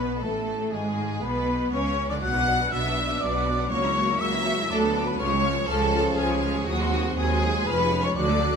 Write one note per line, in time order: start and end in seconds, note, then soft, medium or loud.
0.00 0.22 B1 medium
0.00 0.22 B2 medium
0.00 0.22 B3 medium
0.00 0.23 B3 medium
0.00 0.23 B4 medium
0.00 0.24 B5 medium
0.22 0.73 A1 medium
0.22 0.73 A2 medium
0.22 0.72 A3 medium
0.22 0.71 A4 medium
0.22 0.73 A4 medium
0.22 0.74 A5 medium
0.72 1.22 G#1 medium
0.72 1.23 G#2 medium
0.72 1.22 G#3 medium
0.72 1.21 G#4 medium
0.72 1.22 G#4 medium
0.72 1.24 G#5 medium
1.21 1.71 B1 medium
1.21 1.72 B2 medium
1.21 1.72 B3 medium
1.21 1.72 B4 medium
1.21 1.72 B5 medium
1.72 2.09 C#2 medium
1.72 2.09 C#3 medium
1.72 2.10 C#4 medium
1.72 2.09 C#4 medium
1.72 2.09 C#5 medium
1.72 2.09 C#6 medium
2.09 2.15 D3 medium
2.09 2.15 D4 medium
2.09 2.22 D4 medium
2.09 2.14 D5 medium
2.09 2.23 D5 medium
2.09 2.15 D6 medium
2.22 2.66 B1 medium
2.22 2.66 B2 medium
2.22 5.16 F#3 medium
2.22 2.34 B3 medium
2.22 3.67 D4 medium
2.22 2.34 F#4 medium
2.22 2.33 D5 medium
2.22 2.72 F#5 medium
2.22 2.74 F#6 medium
2.34 2.47 D4 soft
2.34 2.47 B4 soft
2.34 2.47 F#5 soft
2.47 2.60 B3 soft
2.47 2.59 F#4 soft
2.47 2.59 D5 soft
2.59 2.72 D4 soft
2.59 2.72 B4 soft
2.59 2.72 F#5 medium
2.72 3.15 B1 medium
2.72 3.16 B2 medium
2.72 2.83 B3 soft
2.72 2.84 F#4 soft
2.72 2.84 D5 soft
2.72 3.21 E5 medium
2.72 3.23 E6 medium
2.84 2.97 D4 soft
2.84 2.96 B4 soft
2.84 2.97 F#5 soft
2.96 3.09 B3 medium
2.96 3.09 F#4 medium
2.96 3.09 D5 soft
3.09 3.21 D4 soft
3.09 3.21 B4 soft
3.09 3.22 F#5 soft
3.21 3.65 B1 medium
3.21 3.65 B2 medium
3.21 3.33 B3 soft
3.21 3.33 F#4 soft
3.21 3.71 D5 medium
3.21 3.33 D5 soft
3.21 3.70 D6 medium
3.33 3.46 D4 soft
3.33 3.46 B4 soft
3.33 3.47 F#5 soft
3.46 3.59 B3 medium
3.46 3.58 F#4 soft
3.46 3.58 D5 medium
3.58 3.71 D4 soft
3.58 3.71 B4 soft
3.58 3.71 F#5 medium
3.70 4.14 C#2 medium
3.70 3.82 A#3 medium
3.70 4.66 A#3 medium
3.70 3.82 F#4 medium
3.70 4.20 C#5 medium
3.70 3.82 C#6 medium
3.70 4.23 C#6 medium
3.83 3.96 C#4 medium
3.83 3.96 E4 medium
3.83 3.96 A#5 medium
3.95 4.08 A#3 medium
3.95 4.08 F#4 medium
3.95 4.08 C#6 medium
4.08 4.20 C#4 medium
4.08 4.21 E4 medium
4.08 4.20 A#5 medium
4.20 4.64 C#2 medium
4.20 4.32 A#3 medium
4.20 4.32 F#4 medium
4.20 4.69 E5 loud
4.20 4.32 C#6 medium
4.20 4.72 E6 medium
4.32 4.46 C#4 soft
4.32 4.46 E4 soft
4.32 4.45 A#5 medium
4.45 4.58 A#3 medium
4.45 4.58 F#4 medium
4.45 4.58 C#6 soft
4.58 4.70 C#4 medium
4.58 4.70 E4 medium
4.58 4.70 A#5 medium
4.69 5.13 D2 medium
4.69 5.14 D2 medium
4.69 5.16 B3 medium
4.69 4.81 D4 medium
4.69 4.82 F#4 medium
4.69 5.07 A4 medium
4.69 5.06 A5 medium
4.69 4.82 D6 medium
4.82 4.95 B3 medium
4.82 4.94 D4 soft
4.82 4.95 B5 medium
4.95 5.06 D4 medium
4.95 5.07 F#4 medium
4.95 5.08 D6 medium
5.07 5.20 B3 medium
5.07 5.19 D4 medium
5.07 5.19 B4 medium
5.07 5.12 B5 medium
5.07 5.19 B5 medium
5.19 5.63 C#2 medium
5.19 6.63 F3 medium
5.19 5.31 F3 medium
5.19 6.63 C#4 medium
5.19 5.31 F4 medium
5.19 5.69 C#5 medium
5.19 5.47 C#6 medium
5.19 5.31 F6 medium
5.30 5.44 G#3 medium
5.30 5.44 G#4 medium
5.30 5.44 C#6 medium
5.43 5.56 F3 medium
5.43 5.56 F4 medium
5.43 5.56 F6 medium
5.55 5.68 G#3 medium
5.55 5.69 G#4 medium
5.55 5.68 C#6 medium
5.67 6.12 C#2 medium
5.67 5.80 F3 medium
5.67 5.80 F4 medium
5.67 6.18 A4 loud
5.67 6.20 A5 medium
5.67 5.80 F6 medium
5.79 5.93 G#3 medium
5.79 5.93 G#4 medium
5.79 5.92 C#6 medium
5.92 6.06 F3 medium
5.92 6.06 F4 medium
5.92 6.05 F6 medium
6.04 6.18 G#3 medium
6.04 6.18 G#4 medium
6.04 6.17 C#6 medium
6.17 6.61 C#2 medium
6.17 6.29 F3 medium
6.17 6.30 F4 medium
6.17 6.67 G#4 medium
6.17 6.69 G#5 medium
6.17 6.29 F6 medium
6.30 6.43 G#3 medium
6.30 6.43 G#4 medium
6.30 6.43 C#6 medium
6.42 6.55 F3 medium
6.42 6.55 F4 medium
6.42 6.55 F6 medium
6.55 6.67 G#3 medium
6.55 6.66 G#4 medium
6.55 6.68 C#6 medium
6.67 7.11 D#2 medium
6.67 6.79 F#3 medium
6.67 8.12 G#3 medium
6.67 7.49 C4 medium
6.67 7.17 F#4 medium
6.67 6.79 G#4 medium
6.67 7.17 F#5 medium
6.67 6.79 D#6 medium
6.79 6.92 G#3 medium
6.79 6.92 F#4 medium
6.79 6.93 C6 medium
6.92 7.05 F#3 medium
6.92 7.05 G#4 medium
6.92 7.05 D#6 medium
7.04 7.17 G#3 medium
7.04 7.17 F#4 medium
7.04 7.17 C6 medium
7.16 7.60 D#2 medium
7.16 7.61 D#2 medium
7.16 7.28 F#3 medium
7.16 7.28 G#4 medium
7.16 7.66 G#4 medium
7.16 7.68 G#5 medium
7.16 7.29 D#6 medium
7.29 7.42 G#3 medium
7.29 7.42 F#4 medium
7.29 7.42 C6 medium
7.42 7.54 F#3 medium
7.42 7.54 G#4 medium
7.42 7.54 D#6 medium
7.54 7.67 G#3 medium
7.54 7.67 F#4 medium
7.54 7.67 C6 medium
7.66 8.10 F1 medium
7.66 8.10 F2 medium
7.66 7.78 F3 medium
7.66 8.13 C#4 medium
7.66 7.78 G#4 medium
7.66 8.04 B4 loud
7.66 8.06 B5 medium
7.66 7.78 F6 medium
7.79 7.91 G#3 medium
7.79 7.91 F4 medium
7.79 7.91 C#6 medium
7.91 8.04 F3 medium
7.91 8.04 G#4 medium
7.91 8.04 F6 medium
8.03 8.16 G#3 medium
8.03 8.16 F4 medium
8.03 8.17 C#5 medium
8.03 8.18 C#6 medium
8.03 8.16 C#6 medium
8.16 8.56 D2 medium
8.16 8.56 D3 medium
8.16 8.56 F#3 medium
8.16 8.28 F#3 medium
8.16 8.56 D4 medium
8.16 8.28 F#4 medium
8.16 8.56 D5 medium
8.16 8.56 D6 medium
8.16 8.28 F#6 medium
8.28 8.41 A3 medium
8.28 8.41 A4 medium
8.28 8.42 D6 medium
8.41 8.53 F#3 medium
8.41 8.54 F#4 medium
8.41 8.53 F#6 medium